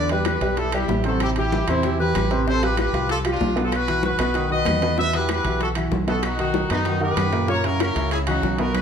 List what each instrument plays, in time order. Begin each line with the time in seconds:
Already playing: fingered electric bass E2, horn section D5
0.09 upright piano G3 G4 B4, horn section G4 B4, high conga, high timbale
0.25 horn section G4 B4, high bongo, high conga, high timbale, claves
0.41 fingered electric bass B1, upright piano G3 G4 B4, high timbale
0.57 horn section E4 A4, high bongo, high conga, high timbale
0.72 upright piano G3 G4 B4, horn section E4 G4, high conga, high timbale, claves
0.88 fingered electric bass A1, high bongo, low bongo, high conga, low timbale
1.04 upright piano C3 C4 C5, horn section F#4 A4, high conga, high timbale
1.20 horn section E4 G4, high bongo, high conga, high timbale, claves
1.36 upright piano E3 E4 G4, horn section E4 G4, high bongo, high conga, high timbale
1.52 high bongo, high conga
1.68 fingered electric bass E2, upright piano C3 C4 C5, horn section C4 E4, high bongo, high conga, high timbale, claves
1.83 upright piano E3 E4 G4, high bongo, high conga, high timbale
1.99 upright piano E3 E4 G4, horn section G4 B4, high conga
2.15 fingered electric bass A1, high bongo, low bongo, high conga, high timbale, claves
2.31 upright piano C3 C4 C5, high bongo, high conga, high timbale
2.47 upright piano C3 C4 C5, horn section A4 C5, high bongo, high conga
2.62 upright piano F3 F4 G4, horn section G4 B4, high conga, high timbale
2.77 horn section G4 B4, high bongo, high conga, high timbale, claves
2.93 fingered electric bass C2, upright piano F3 F4 G4, high conga, high timbale
3.09 horn section F4 A4, high bongo, high conga, high timbale
3.25 upright piano F3 F4 G4, high conga, high timbale, claves
3.32 horn section D4 F4
3.41 fingered electric bass B1, high bongo, low bongo, high conga, low timbale
3.56 upright piano B2 B3 B4, high conga, high timbale
3.64 horn section F4 A4
3.71 horn section B4, high bongo, high conga, high timbale, claves
3.76 horn section F#4
3.87 upright piano E3 E4 F#4, high bongo, high conga, high timbale
4.03 horn section F#4 B4, high bongo, high conga
4.19 fingered electric bass B1, upright piano B2 B3 B4, high conga, high timbale, claves
4.34 upright piano D#3 D#4 F#4, high bongo, high conga, high timbale
4.50 upright piano D#3 D#4 F#4, horn section B4 D#5, high conga
4.65 fingered electric bass E2, high bongo, low bongo, high conga, high timbale, low timbale, claves
4.81 upright piano B2 B3 B4, high bongo, high conga, high timbale
4.97 upright piano B2 B3 B4, horn section B4 E5, high bongo, high conga
5.13 upright piano E3 E4 F#4, horn section G4 B4, high conga, high timbale
5.29 horn section G4 B4, high bongo, high conga, high timbale, claves
5.44 fingered electric bass B1, upright piano E3 E4 F#4, high conga, high timbale
5.60 horn section F#4 A4, high bongo, high conga, high timbale
5.75 upright piano E3 E4 F#4, high conga, high timbale, claves
5.91 fingered electric bass B1, high bongo, low bongo, high conga
6.07 upright piano B2 B3 B4, horn section F#4 A4, high conga, high timbale
6.23 horn section D#4 F#4, high bongo, high conga, high timbale, claves
6.38 upright piano D#3 D#4 F#4, horn section D#4 F#4, high bongo, high conga, high timbale
6.54 high bongo, high conga
6.70 fingered electric bass F#2, upright piano B2 B3 B4, horn section B3 D#4, high bongo, high conga, high timbale, claves
6.85 upright piano D#3 D#4 F#4, high bongo, high conga, high timbale
7.01 upright piano D#3 D#4 F#5, horn section G4 B4, high conga
7.17 fingered electric bass F#2, high bongo, low bongo, high conga, high timbale, claves
7.32 upright piano A#2 A#3 A#4, high bongo, high timbale
7.48 upright piano A#2 A#3 A#4, horn section A#4 C#5, high bongo, high conga
7.64 upright piano C#3 C#4 E4, horn section F#4 A#4, high conga, high timbale
7.80 horn section F#4 A#4, high bongo, high conga, high timbale, claves
7.95 fingered electric bass C#2, upright piano C#3 C#4 E4, high conga, high timbale
8.11 horn section E4 G#4, high bongo, high conga, high timbale
8.27 upright piano C#3 E3 C#4, horn section D#4 F#4, high conga, high timbale, claves
8.43 fingered electric bass B1, high bongo, low bongo, high conga
8.58 upright piano B2 B3 B4, horn section F#4 A#4, high conga, high timbale
8.74 horn section F#4 B4, high bongo, high conga, high timbale, claves